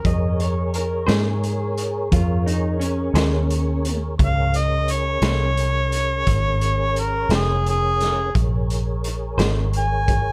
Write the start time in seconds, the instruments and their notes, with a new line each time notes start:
0.03 fingered electric bass F2, tonewheel organ G#4 A#4 C#5, clean electric guitar D#5, kick, closed hi-hat
0.40 clean electric guitar C#5, closed hi-hat
0.74 clean electric guitar A#4, closed hi-hat
1.07 fingered electric bass G#2, clean electric guitar A#3 C#4 G#4 C5, snare, closed hi-hat
1.44 closed hi-hat
1.78 closed hi-hat
2.12 fingered electric bass F2, clean electric guitar F4, kick, closed hi-hat
2.46 clean electric guitar D#4, closed hi-hat
2.80 clean electric guitar C#4, closed hi-hat
3.14 fingered electric bass D#2, clean electric guitar A#3 C#4 G#4 C5, snare, closed hi-hat
3.50 closed hi-hat
3.85 closed hi-hat
4.18 fingered electric bass C#2, tonewheel organ C#4 G#4 A#4 C#5, kick, closed hi-hat
4.24 harmonica F5
4.54 harmonica D#5, closed hi-hat
4.88 harmonica C#5, closed hi-hat
5.22 fingered electric bass C2, clean electric guitar A#3 C#4 G#4 C5, snare, closed hi-hat
5.57 closed hi-hat
5.92 closed hi-hat
6.27 fingered electric bass G#1, kick, closed hi-hat
6.61 closed hi-hat
6.96 harmonica A#4, closed hi-hat
7.29 fingered electric bass F1, clean electric guitar A#3 C#4 G#4 C5, snare, closed hi-hat
7.35 harmonica G#4
7.66 harmonica G#4, closed hi-hat
8.01 snare, closed hi-hat
8.35 fingered electric bass A#1, tonewheel organ G#4 A#4 C#5, kick, closed hi-hat
8.70 closed hi-hat
9.04 closed hi-hat
9.37 fingered electric bass G#1, clean electric guitar A#3 C#4 G#4 C5, snare, closed hi-hat
9.73 closed hi-hat
9.78 harmonica G#5
10.08 kick, closed hi-hat